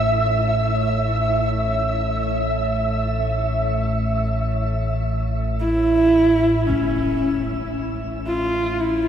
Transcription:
0.00 6.66 A1 medium
0.00 6.67 A2 medium
0.00 9.08 A3 medium
0.00 9.08 C#5 medium
0.00 6.69 E5 medium
0.00 9.08 E5 medium
5.60 6.68 E4 loud
6.67 9.08 A1 medium
6.67 9.08 A2 medium
6.67 7.73 C#4 medium
6.67 impact medium
8.27 8.82 F4 loud
8.80 9.08 E4 loud

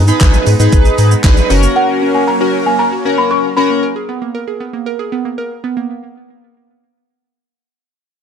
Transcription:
0.00 0.12 G#2 loud
0.00 1.46 G#3 medium
0.00 1.46 B3 medium
0.00 1.46 D#4 medium
0.00 1.46 B5 medium
0.08 0.20 B3 medium
0.08 0.50 D#4 medium
0.08 0.50 G#4 medium
0.08 0.51 B4 loud
0.08 shaker medium
0.21 0.38 G#1 loud
0.21 0.33 B4 loud
0.21 kick loud
0.21 snare medium
0.21 clap loud
0.21 closed hi-hat medium
0.21 shaker medium
0.34 0.46 G#4 medium
0.34 shaker medium
0.47 0.55 G#2 loud
0.47 0.59 D#4 medium
0.47 open hi-hat medium
0.47 shaker medium
0.59 0.68 G#2 loud
0.59 0.72 B3 medium
0.59 1.13 D#4 loud
0.59 1.13 G#4 medium
0.59 1.13 B4 loud
0.59 shaker medium
0.73 0.89 G#1 loud
0.73 0.85 B4 loud
0.73 kick loud
0.73 closed hi-hat medium
0.73 shaker medium
0.85 0.98 G#4 medium
0.85 shaker medium
0.98 1.15 G#2 loud
0.98 1.11 D#4 medium
0.98 open hi-hat medium
0.98 shaker medium
1.11 1.24 B3 medium
1.11 shaker medium
1.24 1.41 G#1 loud
1.24 1.50 D#4 medium
1.24 1.50 G#4 medium
1.24 1.36 B4 medium
1.24 1.50 B4 loud
1.24 kick loud
1.24 snare loud
1.24 clap loud
1.24 closed hi-hat medium
1.24 shaker medium
1.37 shaker medium
1.50 1.67 F#1 loud
1.50 3.81 F#3 medium
1.50 3.81 A#3 medium
1.50 2.24 C#4 loud
1.50 3.81 C#4 medium
1.50 1.62 C#4 medium
1.50 2.24 F#4 medium
1.50 2.24 A#4 loud
1.50 open hi-hat medium
1.50 shaker soft
1.63 1.75 A#3 medium
1.63 shaker medium
1.76 1.88 A#4 loud
1.76 2.16 F#5 loud
1.89 2.01 F#4 medium
2.02 2.14 C#4 medium
2.15 2.27 A#3 medium
2.15 2.28 G#5 medium
2.28 2.40 A#4 loud
2.28 2.64 A#5 loud
2.40 2.94 C#4 medium
2.40 2.94 F#4 medium
2.40 2.53 F#4 medium
2.40 2.94 A#4 medium
2.54 2.66 C#4 medium
2.66 2.79 A#3 medium
2.66 2.78 G#5 medium
2.79 2.92 A#4 loud
2.79 3.19 A#5 loud
2.92 3.05 F#4 medium
3.05 3.48 C#4 medium
3.05 3.18 C#4 medium
3.05 3.48 F#4 medium
3.05 3.48 A#4 medium
3.18 3.30 A#3 medium
3.18 3.31 B5 loud
3.31 3.43 A#4 medium
3.31 3.58 C#6 loud
3.57 3.83 C#4 medium
3.57 3.69 C#4 medium
3.57 3.83 F#4 medium
3.57 3.83 A#4 loud
3.57 5.60 B5 loud
3.70 3.82 A#3 medium
3.83 3.95 A#4 loud
3.96 4.08 G#4 medium
4.09 4.21 B3 medium
4.22 4.34 A#3 medium
4.35 4.47 A#4 medium
4.48 4.60 G#4 medium
4.60 4.73 B3 medium
4.73 4.86 A#3 medium
4.86 4.99 A#4 loud
4.99 5.11 G#4 medium
5.12 5.24 B3 medium
5.25 5.37 A#3 medium
5.38 5.50 A#4 medium
5.64 5.76 B3 medium
5.77 5.89 A#3 medium

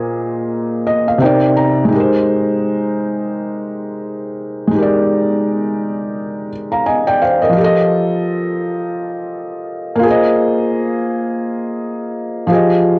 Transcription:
0.00 1.13 A#2 medium
0.00 1.15 A#3 medium
0.00 1.17 G#4 medium
0.00 1.19 C5 medium
0.00 0.85 D#5 medium
0.87 1.06 D#5 medium
1.08 1.20 F5 medium
1.18 1.90 C3 medium
1.18 1.91 C4 medium
1.18 1.87 D#4 medium
1.18 1.54 G5 medium
1.23 1.93 A#4 medium
1.23 1.94 D5 medium
1.57 1.89 A#5 medium
1.85 4.66 G#3 medium
1.85 4.68 D#4 medium
1.92 4.70 G4 medium
1.92 4.72 A#4 medium
2.00 4.74 C5 medium
4.68 7.49 G#3 medium
4.68 7.51 D#4 medium
4.75 7.53 G4 medium
4.75 6.49 A#4 medium
4.83 6.51 D5 medium
6.72 6.85 F5 soft
6.72 6.85 A#5 medium
6.86 7.06 D#5 medium
6.86 7.06 G#5 medium
7.07 7.21 D5 medium
7.07 7.20 G5 medium
7.22 7.41 C5 medium
7.22 7.41 F5 medium
7.42 7.76 A#4 medium
7.42 7.63 D#5 medium
7.49 9.96 F3 medium
7.49 9.97 F4 medium
7.57 9.99 G4 medium
7.57 10.01 A4 medium
7.64 10.03 D#5 medium
9.95 12.42 A#3 medium
9.95 12.44 F4 medium
10.03 12.46 G#4 medium
10.07 12.48 C5 medium
10.07 12.50 D#5 medium
12.47 12.99 F3 medium
12.47 12.99 F4 medium
12.47 12.99 G4 medium
12.52 12.99 G#4 medium
12.52 12.99 D#5 medium

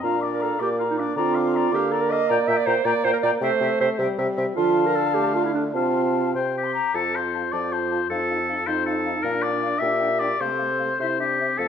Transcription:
0.01 0.54 A#2 medium
0.01 0.60 D4 medium
0.01 0.16 F4 medium
0.01 0.25 F5 soft
0.01 0.22 A#5 medium
0.20 0.44 D5 soft
0.20 0.41 D6 soft
0.33 0.42 A#4 medium
0.40 0.61 A4 medium
0.40 0.61 F5 soft
0.40 0.61 A#5 soft
0.59 1.10 A#2 medium
0.59 1.16 A#3 medium
0.59 0.70 G4 medium
0.59 0.78 D5 soft
0.59 0.77 D6 soft
0.78 0.84 F4 medium
0.78 1.01 F5 soft
0.78 0.99 A#5 soft
0.91 0.95 D#4 medium
0.97 1.17 D4 medium
0.97 1.17 D5 soft
0.97 1.15 D6 soft
1.16 1.66 D3 medium
1.16 1.72 C4 medium
1.16 1.73 F4 medium
1.16 1.36 D5 medium
1.16 1.37 A#5 medium
1.35 1.58 F5 soft
1.35 1.55 D6 soft
1.54 1.77 D5 medium
1.54 1.73 A#5 soft
1.72 2.22 D3 medium
1.72 2.82 A#3 medium
1.72 1.93 G4 medium
1.72 1.93 F5 medium
1.72 1.89 D6 medium
1.90 2.03 A4 medium
1.90 2.14 D5 medium
1.90 2.11 A#5 soft
2.02 2.12 A#4 medium
2.09 2.31 D#5 medium
2.09 2.30 F5 medium
2.09 2.28 D6 medium
2.28 2.38 A#2 medium
2.28 2.49 D5 medium
2.28 2.39 G5 medium
2.28 2.34 A#5 medium
2.48 2.56 A#2 medium
2.48 2.59 E5 medium
2.48 2.58 G5 medium
2.48 2.54 A#5 medium
2.57 2.68 D5 medium
2.65 2.75 A#2 medium
2.65 2.87 C5 medium
2.65 2.77 G5 medium
2.65 2.71 A#5 medium
2.85 2.93 A#2 medium
2.85 3.41 A#3 medium
2.85 3.06 D5 medium
2.85 2.95 G5 medium
2.85 2.91 A#5 medium
3.04 3.13 A#2 medium
3.04 3.13 C5 loud
3.04 3.14 G5 medium
3.04 3.10 A#5 medium
3.13 3.18 A#4 medium
3.23 3.31 A#2 medium
3.23 3.32 D5 medium
3.23 3.33 G5 medium
3.23 3.29 A#5 medium
3.41 3.50 C3 medium
3.41 4.00 A3 medium
3.41 3.80 C5 loud
3.41 3.52 E5 medium
3.41 3.47 G5 medium
3.60 3.69 C3 medium
3.60 3.71 E5 medium
3.60 3.66 G5 medium
3.80 3.89 C3 medium
3.80 3.89 C5 medium
3.80 3.89 E5 medium
3.80 3.86 G5 medium
3.99 4.07 C3 medium
3.99 4.56 G3 medium
3.99 4.08 E5 medium
3.99 4.06 G5 medium
4.17 4.27 C3 medium
4.17 4.27 E5 medium
4.17 4.23 G5 medium
4.37 4.46 C3 medium
4.37 4.46 E5 medium
4.37 4.43 G5 medium
4.56 5.76 D3 medium
4.56 4.94 F3 medium
4.56 4.88 F4 medium
4.56 5.71 F5 medium
4.56 5.43 A5 medium
4.86 4.97 A#4 medium
4.96 5.16 A4 medium
5.14 5.76 A3 medium
5.14 5.34 G4 medium
5.35 5.47 F4 medium
5.45 5.54 E4 medium
5.54 5.63 D4 medium
5.73 6.34 C3 medium
5.73 6.65 C4 medium
5.73 6.33 F4 medium
5.73 6.34 F5 medium
5.73 6.33 A5 medium
6.33 6.74 C3 medium
6.33 6.54 C5 medium
6.33 6.65 G5 medium
6.57 6.97 G4 medium
6.63 6.73 C6 medium
6.74 6.93 A#5 soft
6.94 7.46 F2 soft
6.94 8.63 F4 medium
6.94 7.04 F4 soft
6.94 7.17 A4 medium
6.94 7.00 A5 soft
7.12 7.24 F4 soft
7.12 7.53 C5 medium
7.12 7.18 A5 soft
7.34 7.43 F4 soft
7.34 7.40 A5 soft
7.52 8.04 F2 soft
7.52 7.62 F4 soft
7.52 7.74 D5 medium
7.52 7.58 A5 soft
7.72 7.81 F4 soft
7.72 8.09 C5 medium
7.72 7.78 A5 soft
7.91 8.00 F4 soft
7.91 7.97 A5 soft
8.10 8.60 F2 medium
8.10 8.19 D#4 soft
8.10 8.68 A4 medium
8.10 8.17 F5 soft
8.30 8.39 D#4 soft
8.30 8.36 F5 soft
8.49 8.57 D#4 soft
8.49 8.55 F5 soft
8.66 9.17 F2 medium
8.66 9.27 D#4 medium
8.66 8.76 D#4 soft
8.66 8.85 C5 medium
8.66 8.73 F5 soft
8.86 8.96 D#4 soft
8.86 9.24 A4 medium
8.86 8.92 F5 soft
9.05 9.14 D#4 medium
9.05 9.11 F5 soft
9.23 9.74 A#2 medium
9.23 9.33 D4 medium
9.23 9.84 D4 medium
9.23 9.44 A#4 medium
9.23 9.30 F5 medium
9.42 9.53 D4 soft
9.42 9.80 D5 medium
9.42 9.50 F5 soft
9.61 9.72 D4 soft
9.61 9.67 F5 medium
9.79 10.33 A#2 medium
9.79 9.91 D4 medium
9.79 10.40 G4 medium
9.79 10.21 E5 medium
9.79 9.86 G5 medium
9.99 10.10 D4 medium
9.99 10.05 G5 soft
10.19 10.30 D4 soft
10.19 10.42 D5 medium
10.19 10.26 G5 soft
10.40 10.92 C3 medium
10.40 10.50 A3 medium
10.40 11.27 A4 medium
10.40 11.00 C5 medium
10.40 10.46 F5 medium
10.57 10.70 A3 soft
10.57 10.63 F5 soft
10.79 10.89 A3 soft
10.79 10.85 F5 soft
10.99 11.52 C3 medium
10.99 11.22 E4 medium
10.99 11.19 C5 medium
10.99 11.05 E5 soft
11.18 11.42 D4 medium
11.18 11.60 G4 medium
11.18 11.24 E5 soft
11.40 11.59 C4 soft
11.40 11.46 E5 soft
11.58 11.68 F2 medium
11.58 11.68 A3 soft
11.58 11.68 A4 medium
11.58 11.65 F5 soft

